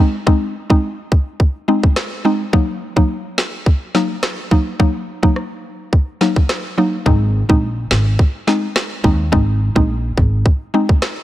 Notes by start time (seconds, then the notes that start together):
0.00 G#3 C4 D#4
0.27 G#3 C4 D#4, kick
0.70 G#3 C4 D#4, kick
1.12 kick
1.40 kick
1.68 G#3 C4 D#4
1.83 kick
1.96 cross-stick, snare
2.25 G#3 C4 D#4
2.53 F#3 A#3 D#4, kick
2.96 F#3 A#3 D#4, kick
3.38 snare
3.66 kick
3.95 F#3 A#3 D#4, snare
4.23 cross-stick, snare
4.51 F#3 A#3 D#4, kick
4.79 F#3 A#3 D#4, kick
5.23 F#3 A#3 D#4, kick
5.36 cross-stick
5.93 kick
6.21 F#3 A#3 D#4, snare
6.36 kick
6.49 cross-stick, snare
6.78 F#3 A#3 D#4
7.06 G#1 G#3 C4 D#4, kick
7.49 A#1 G#3 C4 D#4, kick
7.91 G#1, snare
8.19 kick
8.47 G#3 C4 D#4, snare
8.76 cross-stick, snare
9.04 D#2 G#3 C4 D#4, kick
9.32 G#1 G#3 C4 D#4, kick
9.76 A#1 G#3 C4 D#4, kick
10.17 G#1, kick
10.46 kick
10.74 G#3 C4 D#4
10.89 kick
11.02 cross-stick, snare